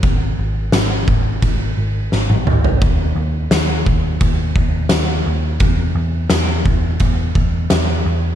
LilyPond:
<<
  \new Staff \with { instrumentName = "Picked electric bass" } { \clef bass \time 4/4 \key fes \lydian \tempo 4 = 86 aes,,8 aes,,8 aes,,8 aes,,8 aes,,8 aes,,8 aes,,8 aes,,8 | ees,8 ees,8 ees,8 ees,8 ees,8 ees,8 ees,8 ees,8 | fes,8 fes,8 fes,8 fes,8 fes,8 fes,8 fes,8 fes,8 | }
  \new DrumStaff \with { instrumentName = "Drums" } \drummode { \time 4/4 <bd cymr>4 <cymr sn tamb>8 bd8 <bd cymr>4 sn16 tommh16 toml16 tomfh16 | <bd cymr>4 <cymr sn tamb>8 bd8 <bd cymr>8 bd8 <cymr sn tamb>4 | <bd cymr>4 <cymr sn tamb>8 bd8 <bd cymr>8 bd8 <cymr sn tamb>4 | }
>>